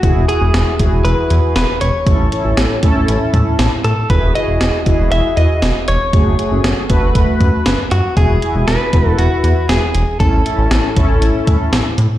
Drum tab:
HH |xxxxxxxx|xxxxxxxx|xxxxxxxx|xxxxxxxx|
SD |--o---o-|--o---o-|--o---o-|--o---o-|
BD |o--o----|o--o-o--|o--o----|o--ooo--|

HH |xxxxxxxx|xxxxxxxx|
SD |--o---o-|--o---o-|
BD |o--o----|o--o-o--|